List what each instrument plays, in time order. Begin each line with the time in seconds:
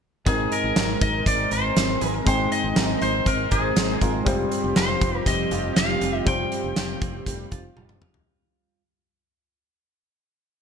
0.26 fingered electric bass G#1, grand piano G#3 C4 D#4 A#4, analog synth pad G#3 C4 A#4, clean electric guitar G#3, lead electric guitar G#4, kick, closed hi-hat
0.51 clean electric guitar D#4, lead electric guitar A#4, closed hi-hat
0.64 fingered electric bass G#1
0.76 fingered electric bass G#1, clean electric guitar A#4, snare, closed hi-hat
1.01 fingered electric bass G#1, clean electric guitar D#4, lead electric guitar D#5, kick, closed hi-hat
1.26 fingered electric bass G#1, clean electric guitar C4, lead electric guitar D5, kick, closed hi-hat
1.51 fingered electric bass G#1, clean electric guitar A#4, lead electric guitar C5, closed hi-hat
1.76 fingered electric bass G#1, clean electric guitar C4, snare, closed hi-hat
2.01 fingered electric bass G#1, clean electric guitar G#4, closed hi-hat
2.09 lead electric guitar A#4
2.14 clean electric guitar A#4
2.25 fingered electric bass G#1, grand piano G#3 C4 D#4 G5, clean electric guitar G#3, analog synth pad C5, lead electric guitar C5, kick, closed hi-hat
2.52 clean electric guitar D#4, lead electric guitar D#5, closed hi-hat
2.64 fingered electric bass G#1
2.76 fingered electric bass G#1, clean electric guitar A#4, snare, closed hi-hat
3.01 fingered electric bass G#1, clean electric guitar D#4, lead electric guitar C5, closed hi-hat
3.26 fingered electric bass G#1, clean electric guitar C4, lead electric guitar A#4, kick, closed hi-hat
3.51 fingered electric bass G#1, lead electric guitar G#4, clean electric guitar A#4, kick, closed hi-hat
3.76 fingered electric bass G#1, clean electric guitar C4, snare, closed hi-hat
4.01 fingered electric bass G#1, grand piano G#3 C4 D#4 F4, clean electric guitar A#4, kick, closed hi-hat
4.25 fingered electric bass F1, analog synth pad F3 C4 G4, grand piano G3 C4 F4 C5, clean electric guitar G3, kick, closed hi-hat
4.51 clean electric guitar C4, closed hi-hat
4.64 fingered electric bass F1
4.76 fingered electric bass F1, clean electric guitar F4, lead electric guitar C5, snare, closed hi-hat
5.01 fingered electric bass F1, clean electric guitar C4, kick, closed hi-hat
5.26 fingered electric bass F1, clean electric guitar G3, lead electric guitar D#5, kick, closed hi-hat
5.51 fingered electric bass F1, clean electric guitar F4, closed hi-hat
5.76 fingered electric bass F1, clean electric guitar G3, lead electric guitar F5, snare, closed hi-hat
6.01 fingered electric bass F1, clean electric guitar F4, closed hi-hat
6.25 fingered electric bass F1, grand piano G3 C4 F4 C5, clean electric guitar G3, lead electric guitar G5, kick, closed hi-hat
6.52 clean electric guitar C4, closed hi-hat
6.64 fingered electric bass F1
6.76 fingered electric bass F1, clean electric guitar F4, snare, closed hi-hat
7.01 fingered electric bass F1, clean electric guitar C4, kick, closed hi-hat
7.26 fingered electric bass F1, clean electric guitar G3, kick, closed hi-hat
7.51 fingered electric bass F1, clean electric guitar F4, kick, closed hi-hat
7.76 fingered electric bass F1, clean electric guitar G3, high tom
7.89 mid tom
8.01 fingered electric bass F1, clean electric guitar F4, mid tom
8.14 floor tom